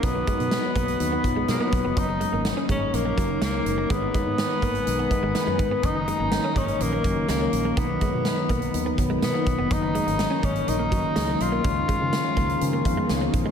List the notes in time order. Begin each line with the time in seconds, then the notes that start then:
Already playing: D#4 D#5
0.02 B1 F#3 B3 D#4 F#4 B4 B5, kick, closed hi-hat
0.15 muted clean electric guitar stroke
0.27 G#3, kick, closed hi-hat
0.39 B2 F#3 B3 D#4 F#4, closed hi-hat
0.51 snare, closed hi-hat
0.76 B1 A#3, kick, closed hi-hat
0.88 closed hi-hat
0.99 D#2 F#3 B3 D#4 F#4, closed hi-hat
1.12 B3
1.23 B1 F#3 B3 D#4 F4, muted clean electric guitar stroke, kick, closed hi-hat
1.36 G#3
1.48 B2 B3, snare, closed hi-hat
1.60 F#3 A#3 B3 D#4 F#4
1.73 B1, muted clean electric guitar stroke, kick, closed hi-hat
1.85 F1 B3
1.96 F#1 F#3 A#3 C#4 D#4 C#5 A#5, kick, closed hi-hat
2.09 muted clean electric guitar stroke
2.21 G#3, closed hi-hat
2.32 G#1 F#3 A#3 C#4 D#4
2.45 muted clean electric guitar stroke, snare, closed hi-hat
2.57 C#4
2.69 G#1 G#3 C#4, kick, closed hi-hat
2.93 A#1 F#3 A#3 C#4 D#4, muted clean electric guitar stroke, closed hi-hat
3.05 A#3
3.17 F#1 F#3 A#3 C#4 D#4, kick, closed hi-hat
3.42 C#2 G#3 A#3, snare, closed hi-hat
3.53 F#3 A#3 C#4 D#4, muted clean electric guitar stroke
3.66 F#1, closed hi-hat
3.78 A#3
3.89 G#1 D#3 G#3 B3 D#4 B4 G#5 B5, kick, closed hi-hat
4.02 muted clean electric guitar stroke
4.14 G#3, kick, closed hi-hat
4.25 G#2 D#3 G#3 B3 D#4
4.38 snare, closed hi-hat
4.62 G#1 A#3, kick, closed hi-hat
4.75 closed hi-hat
4.86 B1 D#3 G#3 B3 D#4, closed hi-hat
4.99 B3
5.11 D#3 G#3 B3 D#4, muted clean electric guitar stroke, kick, closed hi-hat
5.23 G#1 G#3
5.35 B3, snare, closed hi-hat
5.46 F#2 D#3 G#3 B3 D#4
5.59 G#2, muted clean electric guitar stroke, kick, closed hi-hat
5.71 B3
5.83 F#1 D#3 F#3 A#3 C#4 D#4 C#5 D#5 A#5, kick, closed hi-hat
5.96 muted clean electric guitar stroke
6.08 G#3, closed hi-hat
6.19 G#1 D#3 F#3 A#3 C#4
6.32 muted clean electric guitar stroke, snare, closed hi-hat
6.44 C#4
6.56 G#1 G#3 C#4, kick, closed hi-hat
6.68 closed hi-hat
6.79 A#1 D#3 F#3 A#3 C#4, muted clean electric guitar stroke, closed hi-hat
6.93 A#3
7.04 F#1 D#3 F#3 A#3 C#4, kick, closed hi-hat
7.29 C#2 G#3 A#3, snare, closed hi-hat
7.40 D#3 F#3 A#3 C#4, muted clean electric guitar stroke
7.53 A#1, closed hi-hat
7.65 A#3
7.76 B1 D#3 F#3 B3 D#4 B4 B5, kick, closed hi-hat
7.90 muted clean electric guitar stroke
8.01 G#3, kick, closed hi-hat
8.13 B2 D#3 F#3 B3 D#4
8.25 snare, closed hi-hat
8.49 B1 A#3, kick, closed hi-hat
8.62 closed hi-hat
8.73 D#2 D#3 F#3 B3 D#4, closed hi-hat
8.86 B3
8.98 B1 D#3 F#3 B3 D#4, muted clean electric guitar stroke, kick, closed hi-hat
9.10 G#3
9.22 B2 B3, snare, closed hi-hat
9.34 D#3 F#3 A#3 B3 F4
9.46 B1, muted clean electric guitar stroke, kick, closed hi-hat
9.59 F1 B3
9.70 F#1 D#3 F#3 A#3 C#4 D#4 A#4 C#6, kick, closed hi-hat
9.82 muted clean electric guitar stroke
9.95 G#3, closed hi-hat
10.07 G#1 D#3 F#3 A#3 C#4, closed hi-hat
10.19 muted clean electric guitar stroke, snare, closed hi-hat
10.31 C#4
10.43 G#1 G#3 C#4, kick, closed hi-hat
10.56 closed hi-hat
10.67 A#1 D#3 F#3 A#3 D#4, muted clean electric guitar stroke, closed hi-hat
10.79 A#3
10.92 F#1 D#3 F#3 A#3 C#4, kick, closed hi-hat
11.16 C#2 G#3, snare, closed hi-hat
11.28 D#3 F#3 A#3 C#4, muted clean electric guitar stroke
11.40 B1 F4, closed hi-hat
11.52 A#3
11.64 C#2 D#3 F3 G#3 C#4 G#4 F5, kick, closed hi-hat
11.76 muted clean electric guitar stroke
11.88 G#3, kick, closed hi-hat
12.00 C#3 D#3 F3 G#3 C#4
12.13 snare, closed hi-hat
12.37 C#2 A#3 A#5, kick, closed hi-hat
12.49 closed hi-hat
12.60 C#3 D#3 F3 G#3 D#4 G#5, closed hi-hat
12.73 A#3
12.85 F2 D#3 F3 G#3 B3 F5, muted clean electric guitar stroke, kick, closed hi-hat
12.97 G#3
13.09 C#2 D#5, snare, closed hi-hat
13.21 D#3 F3 G#3 A#3 C#4
13.33 A#1, muted clean electric guitar stroke, kick, closed hi-hat
13.46 G#3